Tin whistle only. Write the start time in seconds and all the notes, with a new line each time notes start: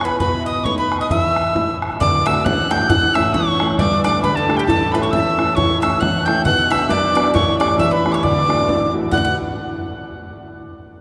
0.04 B5
0.20 B5
0.46 D#6
0.64 C#6
0.78 B5
1.00 D#6
1.10 D#6
1.21 E6
2.01 D6
2.27 E6
2.45 F#6
2.72 G6
2.89 F#6
3.15 E6
3.33 C#6
3.79 D6
4.05 D6
4.23 B5
4.36 A5
4.57 G5
4.67 A5
4.92 B5
5.02 C#6
5.11 E6
5.55 C#6
5.81 E6
6.00 F#6
6.25 G6
6.45 F#6
6.72 E6
6.89 D6
7.34 C#6
7.59 D6
7.79 E6
7.92 B5
8.12 C#6 D6
8.24 D6
9.13 F#6